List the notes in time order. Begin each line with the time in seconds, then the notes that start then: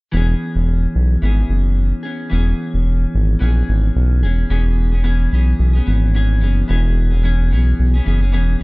0.12 E1 E3 B3 C#4
0.17 G#4
0.55 E1
0.95 B1
1.22 G#1 E3 B3 C#4 G#4
1.49 F#1
2.03 B3 C#4 G#4
2.30 E1 E3 B3 C#4
2.34 G#4
2.74 E1
3.15 G#1
3.39 A#1 E3 B3 C#4 G#4
3.69 G#1
3.96 B1
4.23 E1 B3 C#4 G#4
4.50 E1 E3 B3 C#4 G#4
4.92 B3 C#4 G#4
5.04 E3 B3 C#4 G#4
5.32 B1 E3 B3 C#4 G#4
5.59 B1
5.73 B3 C#4 G#4
5.86 G#1 E3 B3 C#4 G#4
6.14 E3 B3 C#4 G#4
6.40 F#1 E3 B3 C#4 G#4
6.68 E1 E3 B3 C#4 G#4
7.10 B3 C#4 G#4
7.23 E3 B3 C#4 G#4
7.51 B1 E3 B3 C#4 G#4
7.79 B1
7.94 B3 C#4 G#4
8.04 F#1 E3 B3 C#4 G#4
8.21 B3 C#4 G#4
8.32 E1 E3 B3 C#4 G#4
8.59 E3